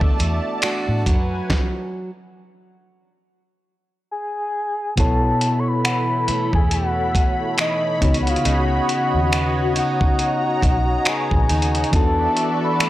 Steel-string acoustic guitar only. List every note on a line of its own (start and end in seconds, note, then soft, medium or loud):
0.00 1.06 E3 medium
0.00 0.18 A3 medium
0.00 0.62 D4 medium
0.00 0.63 F#4 medium
0.19 0.61 A3 medium
0.63 1.16 A3 medium
0.63 1.17 D4 medium
0.63 2.10 F#4 medium
1.06 2.10 F#3 medium
4.97 8.01 B2 medium
5.85 7.57 E3 medium
6.28 8.12 A3 medium
7.58 8.12 E3 medium
8.02 8.44 C#3 medium
8.45 11.93 C#3 medium
9.32 11.06 B3 medium
9.76 11.49 D#4 medium
11.06 11.49 B3 medium
11.49 12.80 B3 medium
11.49 12.04 D#4 medium
11.49 12.89 F#4 medium
11.93 12.89 E3 medium
12.80 12.89 A3 medium